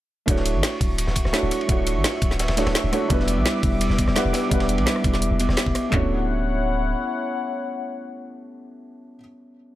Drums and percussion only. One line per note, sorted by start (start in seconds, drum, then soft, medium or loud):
0.28 kick loud
0.28 closed hi-hat loud
0.28 ride medium
0.36 snare medium
0.45 closed hi-hat medium
0.45 ride medium
0.63 snare loud
0.63 closed hi-hat medium
0.63 ride loud
0.81 kick loud
0.81 closed hi-hat medium
0.81 open hi-hat medium
0.98 closed hi-hat loud
0.98 ride medium
1.07 snare medium
1.16 kick medium
1.16 closed hi-hat medium
1.16 ride medium
1.25 cross-stick soft
1.25 snare soft
1.33 snare loud
1.33 closed hi-hat loud
1.33 ride medium
1.51 open hi-hat medium
1.51 ride medium
1.61 ride soft
1.69 kick loud
1.69 closed hi-hat medium
1.69 ride medium
1.87 closed hi-hat medium
1.87 ride medium
2.04 snare loud
2.04 closed hi-hat medium
2.04 ride medium
2.22 kick loud
2.22 closed hi-hat medium
2.22 ride medium
2.31 snare soft
2.39 snare loud
2.39 closed hi-hat medium
2.39 ride medium
2.48 snare loud
2.48 ride medium
2.57 snare loud
2.57 closed hi-hat medium
2.57 ride medium
2.67 cross-stick soft
2.67 snare loud
2.67 ride medium
2.75 snare loud
2.75 closed hi-hat loud
2.75 ride medium
2.93 cross-stick medium
2.93 open hi-hat medium
2.93 ride medium
3.10 kick loud
3.10 closed hi-hat loud
3.10 ride medium
3.20 snare medium
3.27 closed hi-hat medium
3.27 ride medium
3.46 snare loud
3.46 closed hi-hat medium
3.46 ride medium
3.63 kick loud
3.63 closed hi-hat medium
3.63 open hi-hat medium
3.81 closed hi-hat medium
3.81 ride medium
3.90 snare medium
3.98 kick medium
3.98 closed hi-hat medium
3.98 ride medium
4.08 cross-stick soft
4.08 snare soft
4.15 snare loud
4.15 closed hi-hat medium
4.15 ride medium
4.33 snare loud
4.33 open hi-hat medium
4.33 ride medium
4.51 kick loud
4.51 closed hi-hat medium
4.51 ride medium
4.60 snare loud
4.60 ride medium
4.69 closed hi-hat medium
4.78 ride medium
4.86 snare loud
4.86 closed hi-hat medium
4.86 ride medium
4.96 cross-stick medium
5.04 kick loud
5.04 closed hi-hat medium
5.04 ride medium
5.13 snare soft
5.22 closed hi-hat medium
5.40 closed hi-hat medium
5.40 ride medium
5.49 cross-stick soft
5.49 snare medium
5.57 snare loud
5.57 closed hi-hat medium
5.57 ride medium
5.66 kick medium
5.75 cross-stick medium
5.75 open hi-hat medium
5.75 ride medium
5.93 kick loud
5.93 clap medium
5.93 floor tom loud